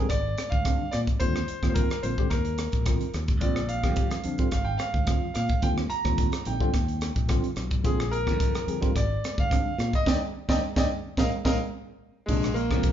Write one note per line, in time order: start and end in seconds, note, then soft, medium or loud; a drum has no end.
0.09 0.33 G#1 medium
0.09 0.17 C4 soft
0.09 0.18 G#4 soft
0.09 0.49 D5 medium
0.09 kick medium
0.09 cross-stick medium
0.09 closed hi-hat medium
0.38 cross-stick medium
0.38 closed hi-hat medium
0.50 0.75 D2 medium
0.50 0.93 F5 medium
0.50 kick medium
0.65 0.83 D3 medium
0.65 0.84 G3 medium
0.65 0.84 C4 medium
0.65 0.84 D4 medium
0.65 kick medium
0.65 cross-stick medium
0.65 closed hi-hat medium
0.91 1.06 A#2 medium
0.91 0.98 D5 medium
0.91 cross-stick medium
0.91 closed hi-hat medium
1.07 1.14 C4 soft
1.07 1.15 F4 soft
1.07 muted fingered electric bass stroke soft
1.07 kick medium
1.07 closed hi-hat soft
1.20 1.44 D#2 medium
1.20 1.38 D3 medium
1.20 1.38 G3 medium
1.20 1.38 C4 medium
1.20 1.39 F4 medium
1.20 1.68 C5 medium
1.20 kick medium
1.20 closed hi-hat medium
1.36 cross-stick medium
1.48 1.56 C4 soft
1.48 1.56 F4 soft
1.48 muted fingered electric bass stroke soft
1.48 closed hi-hat medium
1.63 1.86 D#2 medium
1.63 1.88 D3 medium
1.63 1.88 G3 medium
1.63 1.89 C4 medium
1.63 1.89 F4 medium
1.63 kick medium
1.63 cross-stick medium
1.63 closed hi-hat soft
1.69 1.76 C5 soft
1.74 2.01 A#4 medium
1.74 kick loud
1.74 closed hi-hat medium
1.91 cross-stick medium
1.91 closed hi-hat soft
2.03 2.16 A#1 medium
2.03 2.13 D3 medium
2.03 2.13 G3 medium
2.03 2.13 C4 medium
2.03 2.13 F4 medium
2.03 2.32 C5 medium
2.03 closed hi-hat medium
2.18 2.27 D3 medium
2.18 2.27 G3 medium
2.18 2.27 C4 medium
2.18 2.27 G4 medium
2.18 kick medium
2.30 2.66 D#2 medium
2.30 2.38 C4 soft
2.30 2.39 F4 soft
2.30 3.10 A#4 medium
2.30 kick medium
2.30 cross-stick medium
2.30 closed hi-hat medium
2.45 closed hi-hat soft
2.58 cross-stick medium
2.58 closed hi-hat medium
2.72 2.96 A#1 medium
2.72 kick medium
2.72 closed hi-hat soft
2.86 3.04 D3 medium
2.86 3.04 G3 soft
2.86 3.04 C4 medium
2.86 3.05 F4 medium
2.86 kick loud
2.86 cross-stick medium
2.86 closed hi-hat medium
3.01 closed hi-hat soft
3.14 3.41 D#2 medium
3.14 cross-stick medium
3.14 closed hi-hat soft
3.28 3.35 C4 soft
3.28 3.36 G4 soft
3.28 kick medium
3.28 closed hi-hat soft
3.41 3.85 A#1 medium
3.41 3.59 D3 medium
3.41 3.59 G3 medium
3.41 3.60 C4 medium
3.41 3.60 F4 medium
3.41 3.70 D5 medium
3.41 kick medium
3.41 closed hi-hat medium
3.56 cross-stick medium
3.68 3.77 C4 soft
3.68 3.77 F4 soft
3.68 4.50 F5 medium
3.68 closed hi-hat soft
3.83 4.18 F2 medium
3.83 4.09 D3 medium
3.83 4.10 G3 medium
3.83 4.10 C4 medium
3.83 4.10 G4 medium
3.83 kick medium
3.83 cross-stick medium
3.96 kick medium
3.96 closed hi-hat medium
4.11 cross-stick medium
4.11 closed hi-hat soft
4.24 4.49 F2 medium
4.24 4.34 D3 medium
4.24 4.34 G3 medium
4.24 4.34 C4 medium
4.24 4.34 D4 medium
4.24 closed hi-hat medium
4.38 4.47 D3 medium
4.38 4.48 G3 medium
4.38 4.48 C4 medium
4.38 4.48 F4 medium
4.38 kick medium
4.38 closed hi-hat soft
4.51 4.76 G#1 medium
4.51 4.60 C4 soft
4.51 4.60 G4 soft
4.51 4.68 F5 medium
4.51 kick medium
4.51 cross-stick medium
4.51 closed hi-hat medium
4.65 4.78 G5 medium
4.78 5.33 F5 medium
4.78 cross-stick medium
4.78 closed hi-hat medium
4.94 5.18 D2 medium
4.94 kick medium
5.07 5.25 D3 medium
5.07 5.26 G3 medium
5.07 5.26 C4 medium
5.07 5.26 F4 medium
5.07 kick medium
5.07 cross-stick medium
5.07 closed hi-hat medium
5.34 5.48 A#2 medium
5.34 5.43 C4 soft
5.34 5.43 F4 soft
5.34 5.64 F5 medium
5.34 cross-stick medium
5.34 closed hi-hat medium
5.49 5.57 C4 soft
5.49 5.57 G#4 soft
5.49 muted fingered electric bass stroke soft
5.49 kick medium
5.49 closed hi-hat soft
5.62 5.86 D#2 medium
5.62 5.81 D3 medium
5.62 5.81 G3 medium
5.62 5.81 C4 medium
5.62 5.81 F4 medium
5.62 5.69 G5 medium
5.62 kick medium
5.62 closed hi-hat medium
5.78 cross-stick medium
5.90 5.98 C4 soft
5.90 5.99 G4 soft
5.90 6.48 A#5 loud
5.90 muted fingered electric bass stroke soft
5.90 closed hi-hat soft
6.05 6.28 D#2 medium
6.05 6.30 D3 medium
6.05 6.31 G3 medium
6.05 6.31 C4 medium
6.05 6.31 F4 medium
6.05 kick medium
6.05 cross-stick medium
6.05 closed hi-hat soft
6.18 kick medium
6.18 closed hi-hat medium
6.32 cross-stick medium
6.32 closed hi-hat soft
6.45 6.59 A#1 medium
6.45 6.56 D3 medium
6.45 6.56 G3 medium
6.45 6.56 C4 medium
6.45 6.56 D#4 medium
6.45 7.26 G5 medium
6.45 closed hi-hat medium
6.60 6.69 D3 medium
6.60 6.69 G3 medium
6.60 6.69 C4 medium
6.60 6.69 F4 loud
6.60 kick medium
6.74 7.09 D#2 medium
6.74 kick medium
6.74 cross-stick medium
6.74 closed hi-hat medium
6.88 closed hi-hat soft
7.01 cross-stick medium
7.01 closed hi-hat medium
7.16 7.39 A#1 medium
7.16 kick medium
7.16 closed hi-hat soft
7.28 7.47 D3 medium
7.28 7.47 G3 medium
7.28 7.47 C4 medium
7.28 7.47 F4 medium
7.28 kick loud
7.28 cross-stick medium
7.28 closed hi-hat medium
7.44 closed hi-hat soft
7.56 7.84 B1 medium
7.56 7.64 C4 soft
7.56 7.65 F4 soft
7.56 cross-stick medium
7.56 closed hi-hat soft
7.71 7.78 C4 soft
7.71 7.79 F4 soft
7.71 kick medium
7.71 closed hi-hat soft
7.83 8.29 A#1 medium
7.83 8.02 D3 medium
7.83 8.02 G3 medium
7.83 8.02 C4 medium
7.83 8.03 F4 medium
7.83 8.14 G#4 medium
7.83 kick medium
7.83 closed hi-hat medium
8.00 cross-stick medium
8.11 8.19 C4 soft
8.11 8.20 G4 soft
8.11 8.91 A#4 medium
8.11 closed hi-hat soft
8.26 8.61 F2 medium
8.26 8.52 D3 medium
8.26 8.52 G3 medium
8.26 8.52 C4 medium
8.26 8.52 F4 medium
8.26 kick medium
8.26 cross-stick medium
8.40 kick loud
8.40 closed hi-hat medium
8.55 cross-stick medium
8.55 closed hi-hat soft
8.66 8.91 F2 medium
8.66 8.76 D3 medium
8.66 8.76 G3 medium
8.66 8.77 C4 medium
8.66 8.77 G#4 medium
8.66 closed hi-hat medium
8.81 8.90 D3 medium
8.81 8.90 G3 medium
8.81 8.90 C4 medium
8.81 8.90 F4 medium
8.81 kick medium
8.81 closed hi-hat soft
8.95 9.19 G#1 medium
8.95 9.03 C4 soft
8.95 9.04 F4 soft
8.95 9.40 D5 medium
8.95 kick medium
8.95 cross-stick medium
8.95 closed hi-hat medium
9.24 cross-stick medium
9.24 closed hi-hat medium
9.38 9.61 D2 medium
9.38 9.91 F5 medium
9.38 kick medium
9.51 9.69 D3 medium
9.51 9.69 G3 medium
9.51 9.69 C4 medium
9.51 9.69 D4 medium
9.51 kick loud
9.51 cross-stick medium
9.51 closed hi-hat medium
9.78 9.91 A#2 medium
9.78 9.86 C4 soft
9.78 9.87 G4 soft
9.78 cross-stick medium
9.78 closed hi-hat soft
9.93 10.00 C4 soft
9.93 10.01 G#4 soft
9.93 10.07 D#5 medium
9.93 muted fingered electric bass stroke soft
9.93 kick medium
9.93 closed hi-hat soft
10.06 10.17 D#2 medium
10.06 10.16 A#3 medium
10.06 10.16 D4 medium
10.06 10.16 D#4 medium
10.06 10.17 D5 medium
10.06 10.17 D#5 medium
10.06 10.17 G5 medium
10.06 kick medium
10.06 snare medium
10.49 10.59 D#2 medium
10.49 10.58 A#3 medium
10.49 10.58 D4 medium
10.49 10.58 D#4 loud
10.49 10.58 D5 medium
10.49 10.58 D#5 medium
10.49 10.58 G5 medium
10.49 kick medium
10.49 snare medium
10.76 10.86 D#2 medium
10.76 10.85 A#3 medium
10.76 10.86 D4 medium
10.76 10.85 D#4 medium
10.76 10.85 D5 medium
10.76 10.86 D#5 medium
10.76 10.86 G5 medium
10.76 kick medium
10.76 snare medium
11.17 11.29 A#1 medium
11.17 11.28 G#3 medium
11.17 11.28 A#3 medium
11.17 11.28 D#4 medium
11.17 11.28 A#4 medium
11.17 11.28 D#5 medium
11.17 11.28 F5 medium
11.17 kick medium
11.17 snare medium
11.45 11.56 A#1 medium
11.45 11.56 G#3 medium
11.45 11.56 A#3 medium
11.45 11.56 D#4 medium
11.45 11.55 A#4 medium
11.45 11.54 D#5 medium
11.45 11.55 F5 medium
11.45 kick medium
11.45 snare medium
12.26 12.72 A#1 medium
12.26 12.46 C3 medium
12.26 12.46 F3 medium
12.26 12.56 G#3 medium
12.26 12.47 A#3 medium
12.26 12.46 D4 medium
12.26 12.47 D4 medium
12.26 kick medium
12.26 crash medium
12.43 cross-stick medium
12.43 closed hi-hat soft
12.54 12.92 A#3 medium
12.54 12.64 A#3 soft
12.54 12.64 D4 soft
12.54 closed hi-hat soft
12.70 12.92 F2 medium
12.70 12.92 C3 medium
12.70 12.92 F3 medium
12.70 12.92 A#3 medium
12.70 12.92 C4 medium
12.70 12.89 D4 medium
12.70 kick medium
12.70 cross-stick medium
12.70 closed hi-hat soft
12.83 kick loud
12.83 closed hi-hat medium